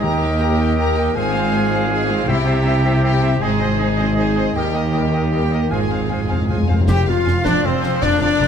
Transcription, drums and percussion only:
6.89 concert bass drum medium
6.89 snare medium
6.89 crash medium
7.28 snare soft
7.45 concert bass drum medium
7.45 snare medium
7.84 snare soft
8.03 concert bass drum medium
8.03 snare medium

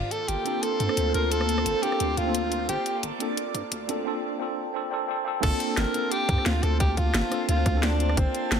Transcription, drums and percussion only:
0.11 closed hi-hat medium
0.28 closed hi-hat medium
0.46 closed hi-hat medium
0.63 cross-stick soft
0.63 closed hi-hat medium
0.80 closed hi-hat medium
0.89 cross-stick medium
0.97 closed hi-hat medium
1.14 closed hi-hat medium
1.31 closed hi-hat medium
1.41 cross-stick medium
1.49 closed hi-hat medium
1.58 cross-stick medium
1.66 closed hi-hat medium
1.83 closed hi-hat medium
1.92 cross-stick soft
2.00 closed hi-hat medium
2.17 closed hi-hat medium
2.35 closed hi-hat medium
2.52 closed hi-hat medium
2.69 closed hi-hat medium
2.86 closed hi-hat medium
3.03 closed hi-hat medium
3.20 closed hi-hat medium
3.37 closed hi-hat medium
3.55 closed hi-hat medium
3.72 closed hi-hat medium
3.89 closed hi-hat medium
5.43 kick loud
5.43 closed hi-hat loud
5.43 crash loud
5.60 closed hi-hat medium
5.77 snare loud
5.77 closed hi-hat loud
5.94 closed hi-hat medium
6.12 closed hi-hat medium
6.29 kick loud
6.29 closed hi-hat medium
6.38 cross-stick soft
6.46 snare loud
6.46 closed hi-hat loud
6.63 cross-stick soft
6.63 closed hi-hat medium
6.80 kick loud
6.80 closed hi-hat medium
6.97 kick medium
6.97 closed hi-hat medium
7.14 snare loud
7.14 closed hi-hat medium
7.32 cross-stick medium
7.32 closed hi-hat medium
7.49 closed hi-hat medium
7.66 kick loud
7.66 closed hi-hat medium
7.83 snare loud
7.83 closed hi-hat loud
8.00 closed hi-hat medium
8.09 cross-stick medium
8.17 kick loud
8.17 closed hi-hat medium
8.35 closed hi-hat medium
8.52 snare loud
8.52 closed hi-hat medium

